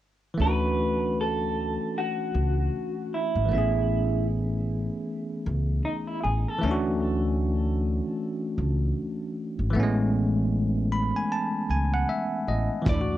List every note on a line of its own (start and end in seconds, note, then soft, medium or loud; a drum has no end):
0.34 3.44 E3 medium
0.34 3.46 A3 medium
0.40 1.76 D2 medium
0.40 3.48 C#4 medium
0.40 1.20 B4 loud
0.44 3.49 D4 medium
0.44 3.51 F#4 medium
1.21 1.99 A4 loud
1.98 3.17 F#4 loud
2.35 2.67 C#2 medium
3.14 3.52 E4 medium
3.36 3.49 G#1 medium
3.45 6.56 E3 medium
3.45 6.58 A3 medium
3.51 4.87 A1 medium
3.51 6.59 B3 medium
3.51 6.61 C#4 medium
3.51 4.26 E4 medium
3.58 6.62 G#4 medium
5.46 5.79 C#2 medium
5.85 6.07 D#4 medium
6.07 6.23 E4 medium
6.23 6.44 A1 medium
6.23 6.48 G#4 medium
6.48 6.85 A4 medium
6.58 9.68 E3 medium
6.58 9.70 A3 medium
6.63 7.99 D2 loud
6.63 9.71 C#4 medium
6.68 9.73 D4 medium
6.68 9.75 F#4 medium
8.58 8.91 C#2 medium
9.59 9.72 G#1 medium
9.70 12.80 E3 medium
9.70 12.82 A3 medium
9.75 11.11 A1 medium
9.75 12.83 B3 medium
9.80 12.86 G#3 medium
9.80 12.85 C#4 medium
10.92 11.13 B5 medium
11.16 11.30 G#5 medium
11.32 11.67 A5 medium
11.70 12.02 C#2 medium
11.70 11.92 G#5 medium
11.94 12.08 F#5 medium
12.09 12.45 E5 medium
12.47 12.67 A1 medium
12.47 12.84 D#5 medium
12.82 13.18 E3 medium
12.82 13.18 A3 medium
12.82 closed hi-hat medium
12.86 13.18 D2 medium
12.86 12.93 E4 medium
12.86 13.18 D5 medium
12.86 kick loud
12.91 13.18 D4 medium
12.91 12.98 E4 medium
13.01 13.18 F#4 medium